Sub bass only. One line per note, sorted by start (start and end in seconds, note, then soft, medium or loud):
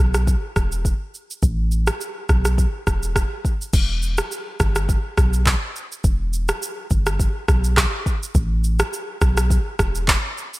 0.00 0.35 B1 medium
0.56 0.93 E1 medium
1.43 1.90 A1 loud
2.29 2.66 B1 loud
2.87 3.24 E1 medium
3.73 4.21 E1 loud
4.60 4.97 G1 loud
5.18 5.54 B1 loud
6.04 6.51 E1 loud
6.91 7.27 G1 medium
7.49 7.85 B1 medium
8.35 8.82 A1 loud
9.22 9.58 B1 loud
9.79 10.16 E1 loud